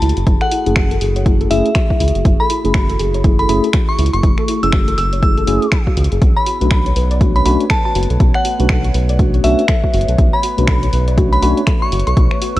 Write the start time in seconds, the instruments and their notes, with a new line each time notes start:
Already playing: ambient pad A3 E4 F#4 G#4
0.02 analog synth bass C#2, synth arpeggio sound E4, open hi-hat
0.09 closed hi-hat
0.17 analog synth bass F#1, synth arpeggio sound F#4, closed hi-hat
0.27 analog synth bass F#1, synth arpeggio sound E4, kick, closed hi-hat
0.41 synth arpeggio sound A4, synth bell F#5, finger snap
0.51 synth arpeggio sound E4, open hi-hat
0.66 analog synth bass F#1, tine electric piano A3 C#4 E4 G#4, synth arpeggio sound G#4, closed hi-hat
0.76 synth arpeggio sound F#4, finger snap, kick
0.91 synth arpeggio sound A4, closed hi-hat
1.01 analog synth bass F#1, synth arpeggio sound G#4, open hi-hat
1.16 synth arpeggio sound C#5, closed hi-hat
1.25 tine electric piano A3 C#4 E4 G#4, synth arpeggio sound E4, kick, closed hi-hat
1.41 synth arpeggio sound A4, closed hi-hat
1.50 analog synth bass F#1, tine electric piano A3 C#4 E4 G#4, synth arpeggio sound E4, synth bell E5, open hi-hat
1.66 synth arpeggio sound A4, closed hi-hat
1.75 synth arpeggio sound F#4, finger snap, kick, closed hi-hat
1.90 synth arpeggio sound E4, kick
2.00 analog synth bass C#2, synth arpeggio sound E4, open hi-hat
2.08 closed hi-hat
2.15 analog synth bass F#1, synth arpeggio sound F#4, closed hi-hat
2.25 analog synth bass F#1, synth arpeggio sound E4, kick, closed hi-hat
2.40 synth arpeggio sound A4, synth bell B5
2.50 synth arpeggio sound E4, open hi-hat
2.64 analog synth bass F#1, tine electric piano A3 C#4 E4 G#4, synth arpeggio sound G#4, closed hi-hat
2.74 synth arpeggio sound F#4, finger snap, kick
2.90 synth arpeggio sound A4, closed hi-hat
2.99 analog synth bass F#1, synth arpeggio sound G#4, open hi-hat
3.14 synth arpeggio sound C#5, closed hi-hat
3.24 tine electric piano A3 C#4 E4 G#4, synth arpeggio sound E4, kick, closed hi-hat
3.39 synth arpeggio sound A4, synth bell B5, closed hi-hat
3.49 analog synth bass F#1, tine electric piano A3 C#4 E4 G#4, synth arpeggio sound E4, synth bell B5, open hi-hat
3.64 synth arpeggio sound A4, closed hi-hat
3.73 synth arpeggio sound F#4, finger snap, kick, closed hi-hat
3.89 synth arpeggio sound E4, synth bell C#6
3.99 analog synth bass C#2, synth arpeggio sound E4, open hi-hat
4.06 closed hi-hat
4.13 analog synth bass F#1, synth arpeggio sound F#4, synth bell C#6, closed hi-hat
4.23 analog synth bass F#1, synth arpeggio sound E4, kick, closed hi-hat
4.38 synth arpeggio sound A4, finger snap
4.48 synth arpeggio sound E4, open hi-hat
4.63 analog synth bass F#1, tine electric piano A3 C#4 E4 G#4, synth arpeggio sound G#4, synth bell E6, closed hi-hat
4.72 synth arpeggio sound F#4, finger snap, kick
4.88 synth arpeggio sound A4, closed hi-hat
4.98 analog synth bass F#1, synth arpeggio sound G#4, synth bell E6, open hi-hat
5.13 synth arpeggio sound C#5, closed hi-hat
5.22 tine electric piano A3 C#4 E4 G#4, synth arpeggio sound E4, synth bell E6, kick, closed hi-hat
5.37 synth arpeggio sound A4, closed hi-hat
5.47 analog synth bass F#1, tine electric piano A3 C#4 E4 G#4, synth arpeggio sound F#4, open hi-hat
5.62 synth arpeggio sound G#4, closed hi-hat
5.72 synth arpeggio sound G#4, finger snap, kick, closed hi-hat
5.87 synth arpeggio sound F#4, kick
5.97 analog synth bass C#2, synth arpeggio sound F#4, open hi-hat
6.04 closed hi-hat
6.12 analog synth bass F#1, synth arpeggio sound G#4, closed hi-hat
6.22 analog synth bass B1, ambient pad A3 B3 B4 C#5, synth arpeggio sound F#4, kick, closed hi-hat
6.37 synth arpeggio sound C#5, synth bell B5
6.46 synth arpeggio sound F#4, open hi-hat
6.61 analog synth bass B1, tine electric piano A3 C#4 D4 F#4, synth arpeggio sound B4, closed hi-hat
6.71 synth arpeggio sound A4, finger snap, kick
6.86 synth arpeggio sound C#5, closed hi-hat
6.96 analog synth bass B1, synth arpeggio sound B4, open hi-hat
7.11 synth arpeggio sound D5, closed hi-hat
7.20 tine electric piano A3 C#4 D4 F#4, synth arpeggio sound F#4, kick, closed hi-hat
7.36 synth arpeggio sound C#5, synth bell B5, closed hi-hat
7.45 analog synth bass B1, tine electric piano A3 C#4 D4 F#4, synth arpeggio sound F#4, synth bell B5, open hi-hat
7.61 synth arpeggio sound C#5, closed hi-hat
7.70 synth arpeggio sound A4, synth bell A5, finger snap, kick, closed hi-hat
7.85 synth arpeggio sound F#4, synth bell A5
7.95 analog synth bass F#1, synth arpeggio sound F#4, open hi-hat
8.03 closed hi-hat
8.10 analog synth bass B1, synth arpeggio sound A4, closed hi-hat
8.20 analog synth bass B1, synth arpeggio sound F#4, kick, closed hi-hat
8.34 synth arpeggio sound C#5, synth bell F#5, finger snap
8.45 synth arpeggio sound F#4, open hi-hat
8.59 analog synth bass B1, tine electric piano A3 C#4 D4 F#4, synth arpeggio sound B4, closed hi-hat
8.69 synth arpeggio sound A4, finger snap, kick
8.85 synth arpeggio sound C#5, closed hi-hat
8.94 analog synth bass B1, synth arpeggio sound B4, open hi-hat
9.09 synth arpeggio sound D5, closed hi-hat
9.19 tine electric piano A3 C#4 D4 F#4, synth arpeggio sound F#4, kick, closed hi-hat
9.34 synth arpeggio sound C#5, closed hi-hat
9.44 analog synth bass B1, tine electric piano A3 C#4 D4 F#4, synth arpeggio sound F#4, synth bell E5, open hi-hat
9.59 synth arpeggio sound C#5, closed hi-hat
9.68 synth arpeggio sound A4, finger snap, kick, closed hi-hat
9.84 synth arpeggio sound F#4, kick
9.94 analog synth bass F#1, synth arpeggio sound F#4, open hi-hat
10.01 closed hi-hat
10.08 analog synth bass B1, synth arpeggio sound A4, closed hi-hat
10.18 analog synth bass B1, synth arpeggio sound F#4, kick, closed hi-hat
10.33 synth arpeggio sound C#5, synth bell B5
10.43 synth arpeggio sound F#4, open hi-hat
10.58 analog synth bass B1, tine electric piano A3 C#4 D4 F#4, synth arpeggio sound B4, closed hi-hat
10.67 synth arpeggio sound A4, finger snap, kick
10.83 synth arpeggio sound C#5, closed hi-hat
10.93 analog synth bass B1, synth arpeggio sound B4, open hi-hat
11.08 synth arpeggio sound D5, closed hi-hat
11.17 tine electric piano A3 C#4 D4 F#4, synth arpeggio sound F#4, kick, closed hi-hat
11.32 synth arpeggio sound C#5, synth bell B5, closed hi-hat
11.42 analog synth bass B1, tine electric piano A3 C#4 D4 F#4, synth arpeggio sound F#4, synth bell B5, open hi-hat
11.57 synth arpeggio sound C#5, closed hi-hat
11.67 synth arpeggio sound A4, finger snap, kick, closed hi-hat
11.82 synth arpeggio sound F#4, synth bell C#6
11.92 analog synth bass F#1, synth arpeggio sound F#4, open hi-hat
11.99 closed hi-hat
12.07 analog synth bass B1, synth arpeggio sound A4, synth bell C#6, closed hi-hat
12.17 analog synth bass B1, synth arpeggio sound F#4, kick, closed hi-hat
12.31 synth arpeggio sound C#5, finger snap
12.41 synth arpeggio sound F#4, open hi-hat
12.56 analog synth bass B1, tine electric piano A3 C#4, synth arpeggio sound B4, synth bell E6, closed hi-hat